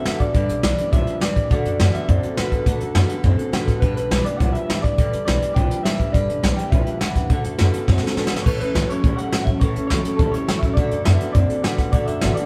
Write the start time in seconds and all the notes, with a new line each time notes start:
Already playing: E5
0.05 A2 D3 A3 B3 D4 F#4 A4, snare, closed hi-hat
0.19 A1 D4 F#4 A4 D5, kick, closed hi-hat
0.34 G1 G2 D3 G3 D4 G4 B4, kick, closed hi-hat
0.49 B1 D4 G4 B4, closed hi-hat
0.63 B1 G2 E3 G3 D4 G4 B4 D5, snare, closed hi-hat
0.78 D4 G4 B4, muted upright bass stroke, closed hi-hat
0.92 B1 G2 F3 G3 D4 G4 B4 E5, kick, closed hi-hat
1.06 D4 G4 B4, muted upright bass stroke, closed hi-hat
1.20 D2 G2 E3 G3 D4 G4 B4 D5, snare, closed hi-hat
1.36 D2 D4 G4 B4, kick, closed hi-hat
1.49 D2 D3 A3 D4 F#4 A4 D5, kick, closed hi-hat
1.64 F#2 D4 F#4 A4, closed hi-hat
1.79 F#2 D3 A3 B3 D4 F#4 A4, snare, closed hi-hat
1.94 D4 F#4 A4 E5, muted upright bass stroke, closed hi-hat
2.08 F#2 D3 A3 C4 D4 F#4 A4 D5, kick, closed hi-hat
2.22 D4 F#4 A4, muted upright bass stroke, closed hi-hat
2.37 A2 D3 A3 B3 D4 F#4 A4 B4, snare, closed hi-hat
2.52 A2 D4 F#4 A4, kick, closed hi-hat
2.66 D2 D3 A3 D4 F#4 A4, kick, closed hi-hat
2.80 F#2 D4 F#4 A4, closed hi-hat
2.95 F#2 D3 A3 B3 D4 F#4 A4, snare, closed hi-hat
3.09 D4 F#4 A4, closed hi-hat
3.23 F#2 D3 A3 C4 D4 F#4 A4, kick, closed hi-hat
3.38 D4 F#4 A4, muted upright bass stroke, closed hi-hat
3.52 A2 D3 A3 B3 D4 F#4 A4, snare, closed hi-hat
3.66 A2 D4 F#4 A4, kick, snare, closed hi-hat
3.80 G1 G2 D3 G3 D4 G4 B4, kick, closed hi-hat
3.85 B4
3.95 B1 G4 B4, closed hi-hat
3.99 D4
4.11 B1 G2 E3 G3 D4 G4 B4, snare, closed hi-hat
4.25 G4 B4 D5, muted upright bass stroke, closed hi-hat
4.29 D4
4.38 B1 G2 F3 G3 D4 F#5, kick, closed hi-hat
4.43 G4 B4
4.53 G4 B4 E5, muted upright bass stroke, closed hi-hat
4.58 D4
4.69 D2 G2 E3 G3 D4 G4 B4, snare, closed hi-hat
4.74 E5
4.82 D2 G4 B4 D5, kick, closed hi-hat
4.86 D4
4.98 G1 G2 D3 G3 D4 G4 B4, kick, closed hi-hat
5.12 B1 D4 G4 B4, closed hi-hat
5.25 B1 G2 E3 G3 D4 G4 B4 D5, snare, closed hi-hat
5.42 D4 G4 B4, muted upright bass stroke, closed hi-hat
5.55 B1 G2 F3 G3 D4 G4 G5, kick, closed hi-hat
5.59 B4
5.71 D4 G4 B4, muted upright bass stroke, closed hi-hat
5.83 D2 G2 E3 G3 D4 G4 B4 E5, snare, closed hi-hat
5.99 D2 D4 G4 B4, kick, closed hi-hat
6.12 G1 G2 D3 G3 D4 G4 D5, kick, closed hi-hat
6.17 B4
6.29 B1 D4 G4 B4, closed hi-hat
6.43 B1 G2 E3 G3 D4 G4 B4, snare, closed hi-hat
6.57 G4 B4 G5, muted upright bass stroke, closed hi-hat
6.61 D4
6.70 B1 G2 F3 G3 D4 G4 B4 E5, kick, closed hi-hat
6.85 D4 G4 B4, closed hi-hat
7.00 D2 G2 E3 G3 D4 G4 B4 F#5, snare, closed hi-hat
7.15 E2 D4 G4 B4, kick, snare, closed hi-hat
7.30 D2 D3 A3 D4 F#4 A4, kick, closed hi-hat
7.44 F#2 D4 F#4 A4, closed hi-hat
7.58 F#2 D3 A3 B3 D4 F#4 A4, snare, closed hi-hat
7.73 D4 F#4 A4, closed hi-hat
7.88 F#2 D3 A3 C4 D4 F#4 A4, kick, snare
7.98 snare
8.03 D4 F#4 A4, muted upright bass stroke
8.07 snare
8.17 A2 D3 A3 B3 D4 F#4 A4, snare
8.27 A4, snare
8.32 G1 D4 F#4
8.36 snare
8.42 A2 E3 A3 C#4 B4 C#5
8.46 A1 A2 E3 E4 A4, kick, closed hi-hat, crash
8.60 C#2 A3 C#4 E4 A4 B4, closed hi-hat
8.74 C#2 A2 E3 F#3 A3 C#4 E4 A4, snare, closed hi-hat
8.88 A3 C#4 E4 A4 C#5, muted upright bass stroke, closed hi-hat
9.02 C#2 A2 G3 A3 C#4 E4 A4, kick, closed hi-hat
9.17 C#4 E4 A4 F#5, muted upright bass stroke, closed hi-hat
9.21 A3
9.31 E2 A2 E3 F#3 A3 C#4 E4 A4, snare, closed hi-hat
9.44 E2 A4 E5, kick, closed hi-hat
9.49 A3 C#4 E4
9.60 A1 A2 E3 A3 C#4 E4 A4 C#5, kick, closed hi-hat
9.76 C#2 A3 C#4 E4 A4, closed hi-hat
9.87 C#2 A2 E3 F#3 C#5, snare, closed hi-hat
9.92 A3 C#4 E4 A4
10.04 A3 C#4 E4 A4, muted upright bass stroke, closed hi-hat
10.16 C#2 A2 G3 A3 A4, kick, closed hi-hat
10.21 C#4 E4 A4
10.32 A3 C#4 E4 A4 C#5, muted upright bass stroke, closed hi-hat
10.47 E2 A2 E3 F#3 A3 C#4 E4 A4, snare, closed hi-hat
10.59 E2 E4 A4 E5, kick, closed hi-hat
10.64 A3 C#4
10.74 D2 D3 A3 D4 D5, kick, closed hi-hat
10.78 F#4 A4
10.91 F#2 D4 F#4 A4, closed hi-hat
11.05 F#2 D3 A3 B3 D4 F#4 A4 E5, snare, closed hi-hat
11.20 D4 F#4 A4, closed hi-hat
11.32 F#2 D3 A3 C4 D4 D5, kick, closed hi-hat
11.37 F#4 A4
11.50 D4 F#4 A4, muted upright bass stroke, closed hi-hat
11.63 A2 D3 A3 B3 D4 F#4 A4 F#5, snare, closed hi-hat
11.78 A2 D4 F#4 A4, kick, snare, closed hi-hat
11.92 D3 A3 D4 F#4 A4 D5, kick, closed hi-hat
12.06 F#2 F#4 A4 E5, closed hi-hat
12.11 D4
12.21 G#1 D3 A3 B3 D4 F#4 A4, snare, closed hi-hat
12.34 A4 D5, muted upright bass stroke, closed hi-hat
12.39 D4 F#4